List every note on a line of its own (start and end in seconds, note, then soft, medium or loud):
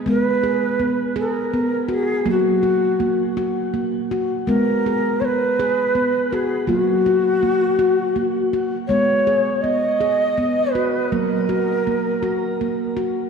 0.06 2.22 G#3 medium
0.06 0.43 B3 medium
0.06 0.20 A#4 medium
0.20 1.13 B4 medium
0.43 0.80 G#4 medium
0.80 1.16 B3 medium
1.16 1.53 G#4 medium
1.16 1.94 A#4 medium
1.54 1.90 B3 medium
1.89 2.26 F#4 medium
1.93 2.28 G#4 medium
2.26 4.43 F#3 medium
2.26 2.63 A#3 medium
2.30 3.34 F#4 medium
2.63 3.00 F#4 medium
3.00 3.36 A#3 medium
3.37 3.73 F#4 medium
3.74 4.10 A#3 medium
4.11 4.47 F#4 medium
4.47 6.64 G#3 medium
4.47 4.84 B3 medium
4.47 5.21 A#4 medium
4.86 5.22 G#4 medium
5.20 5.58 B3 medium
5.20 5.25 C#5 medium
5.24 6.31 B4 medium
5.60 5.95 G#4 medium
5.95 6.31 B3 medium
6.30 6.69 F#4 medium
6.30 6.68 G#4 medium
6.30 6.35 A#4 medium
6.67 8.85 F#3 medium
6.67 7.05 A#3 medium
6.67 6.80 F4 medium
6.80 8.52 F#4 medium
7.06 7.42 F#4 medium
7.43 7.79 A#3 medium
7.79 8.16 F#4 medium
8.16 8.53 A#3 medium
8.53 8.90 F#4 medium
8.87 11.07 G#3 medium
8.87 9.27 B3 medium
8.87 9.62 C#5 medium
9.27 9.64 G#4 medium
9.61 10.01 B3 medium
9.61 10.73 D#5 medium
10.01 10.38 G#4 medium
10.38 10.75 B3 medium
10.72 11.12 F#4 medium
10.72 11.08 B4 medium
11.08 12.95 A#4 medium
11.08 11.12 B4 medium
11.12 13.30 F#3 medium
11.12 11.49 A#3 medium
11.49 11.86 F#4 medium
11.87 12.24 A#3 medium
12.23 12.60 F#4 medium
12.61 12.98 A#3 medium
12.97 13.30 F#4 medium